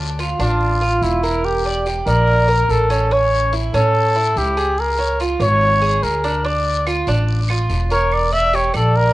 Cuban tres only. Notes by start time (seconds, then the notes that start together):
Already playing: D4
0.19 F4
0.40 D4
0.81 F4
1.23 A#4
1.66 D5
1.86 G4
2.07 D5
2.48 A#4
2.90 C#4
3.11 C#4
3.53 E4
3.74 C#4
4.16 E4
4.57 G#4
4.99 C#5
5.20 F4
5.40 C#5
5.82 G#4
6.24 D4
6.45 D4
6.87 F4
7.08 D4
7.50 F4
7.91 A#4
8.32 D5
8.54 G4
8.74 D5